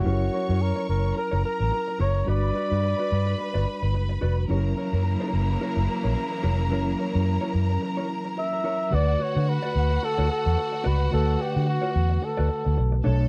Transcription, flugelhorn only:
X:1
M:4/4
L:1/8
Q:"Swing 16ths" 1/4=108
K:D
V:1 name="Flugelhorn"
F2 ^A A A A2 c | d6 z2 | z8 | z6 e2 |
d c B2 A A2 B | A G F2 A3 z |]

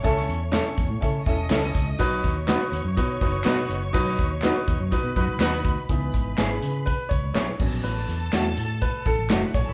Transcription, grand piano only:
X:1
M:4/4
L:1/8
Q:1/4=123
K:Alyd
V:1 name="Grand piano"
[CEA] z [CEA] z [CEA] [CEA] [CEA] z | [DFB] z [DFB] z [DFB] [DFB] [DFB] z | [DFB] z [DFB] z [DFB] [DFB] [DFB] z | z2 G2 B c c2 |
B3 z B A2 c |]
V:2 name="Grand piano"
z8 | z8 | z8 | [E,B,D]3 z4 [F,B,C] |
z8 |]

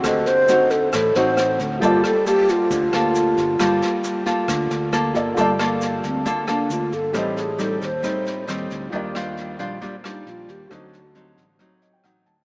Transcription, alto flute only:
X:1
M:4/4
L:1/8
Q:1/4=135
K:Gm
V:1 name="Alto flute"
A c2 A A c2 z | F A G F4- F- | F6 z2 | z3 C B, D F A |
G _A =A c3 z2 | z4 z E F G | ^F3 z4 z |]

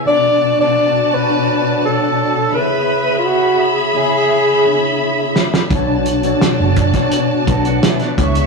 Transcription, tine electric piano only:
X:1
M:4/4
L:1/16
Q:1/4=85
K:Bdor
V:1 name="Tine electric piano"
[B,,B,DAd]2 z [B,,B,DA=c]3 z [B,,B,DA^c]2 z [B,,B,DAc]4 [C,B,EGc]2- | [C,B,EGc]4 z2 [C,B,EGc]3 z [C,B,DEGc]4 z2 | [B,,B,DAc]2 z [B,,B,DAc]3 z [B,,B,DAc]2 z [B,,B,DAB]4 [C,B,EGc]2 |]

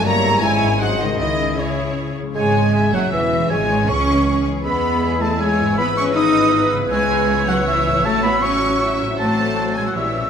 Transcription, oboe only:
X:1
M:3/4
L:1/16
Q:1/4=158
K:C#m
V:1 name="Oboe"
z12 | z12 | g6 f2 e4 | g4 c'6 z2 |
b6 a2 g4 | b2 c'2 d'6 z2 | [K:F#dor] g6 f2 e4 | a2 b2 c'6 z2 |
a6 g f e4 |]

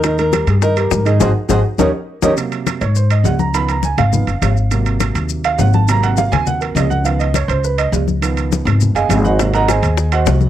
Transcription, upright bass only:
X:1
M:4/4
L:1/8
Q:1/4=205
K:Abmix
V:1 name="Upright bass" clef=bass
E,,3 =G,,3 A,,2 | A,,, z A,,, z E,, z2 E,, | z3 A,,3 D,,2- | D,,3 A,,,2 G,,, A,,,2- |
A,,,3 E,,3 A,,,2- | A,,,3 E,,3 D,,2- | D,,3 D,,3 D,,2- | D,,3 A,,,2 G,,, A,,,2- |
A,,,3 E,,3 C,,2 |]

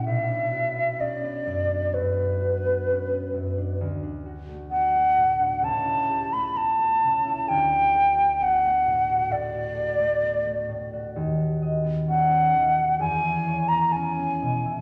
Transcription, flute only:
X:1
M:4/4
L:1/16
Q:1/4=65
K:D
V:1 name="Flute"
e4 d4 B8 | z4 f4 a3 b a4 | g4 f4 d8 | [K:B] z4 f4 g3 a g4 |]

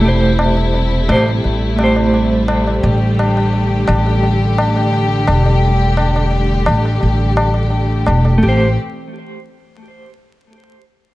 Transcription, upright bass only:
X:1
M:4/4
L:1/8
Q:1/4=86
K:Am
V:1 name="Upright bass" clef=bass
E,,,3 A,,, A,,,4 | A,,,3 A,,,4 E,,,- | E,,,3 A,,, A,,,3 E,,, | A,,, z6 z |]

